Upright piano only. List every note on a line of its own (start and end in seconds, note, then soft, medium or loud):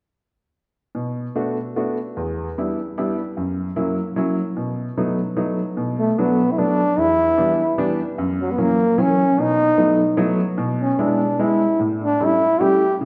0.95 1.25 B2 medium
1.36 1.56 A3 medium
1.36 1.56 B3 soft
1.36 1.56 D4 medium
1.36 1.57 F#4 medium
1.76 1.97 A3 medium
1.76 1.97 B3 soft
1.76 1.97 D4 medium
1.76 1.97 F#4 medium
2.17 2.47 E2 medium
2.58 2.78 G3 soft
2.58 2.78 B3 soft
2.58 2.78 D4 soft
2.58 2.78 E4 medium
2.98 3.18 G3 medium
2.98 3.18 B3 soft
2.98 3.18 D4 soft
2.98 3.18 E4 medium
3.37 3.67 F#2 medium
3.76 3.98 F#3 medium
3.76 3.98 A#3 medium
3.76 3.97 C#4 medium
3.76 3.97 E4 medium
4.16 4.37 F#3 medium
4.16 4.38 A#3 soft
4.16 4.38 C#4 medium
4.16 4.38 E4 medium
4.57 4.87 B2 medium
4.97 5.18 F#3 medium
4.97 5.18 A3 medium
4.97 5.18 B3 medium
4.97 5.18 D#4 medium
5.37 5.58 F#3 medium
5.37 5.58 A3 medium
5.37 5.58 B3 medium
5.37 5.58 D#4 medium
5.77 6.08 B2 medium
6.18 6.40 F#3 medium
6.18 6.40 A3 soft
6.18 6.39 B3 soft
6.18 6.40 D4 medium
6.58 6.80 F#3 medium
6.58 6.80 A3 soft
6.58 6.79 B3 medium
6.58 6.80 D4 medium
6.97 7.28 E2 medium
7.38 7.59 E3 medium
7.38 7.59 G3 medium
7.38 7.59 B3 medium
7.38 7.59 D4 medium
7.78 7.99 E3 medium
7.78 7.99 G3 medium
7.78 7.99 B3 medium
7.78 7.99 D4 medium
8.18 8.49 F#2 medium
8.58 8.79 E3 medium
8.58 8.79 F#3 medium
8.58 8.79 A#3 medium
8.58 8.79 C#4 medium
8.98 9.19 E3 medium
8.98 9.19 F#3 medium
8.98 9.19 A#3 medium
8.98 9.19 C#4 medium
9.38 9.69 B2 medium
9.78 9.99 F#3 medium
9.78 9.99 A3 soft
9.78 9.99 B3 medium
9.78 9.99 D#4 medium
10.17 10.39 F#3 medium
10.17 10.39 A3 medium
10.17 10.39 B3 medium
10.17 10.39 D#4 medium
10.58 10.89 B2 medium
10.99 11.20 G#3 medium
10.99 11.20 B3 soft
10.99 11.20 D4 medium
10.99 11.20 E4 medium
11.39 11.61 G#3 medium
11.39 11.61 B3 soft
11.39 11.61 D4 soft
11.39 11.61 E4 medium
11.80 12.10 A2 medium
12.20 12.41 G3 medium
12.20 12.41 A3 medium
12.20 12.41 C#4 medium
12.20 12.41 E4 medium
12.60 12.81 G3 medium
12.60 12.81 A3 medium
12.60 12.81 C#4 medium
12.60 12.81 E4 medium
13.01 13.05 C#3 medium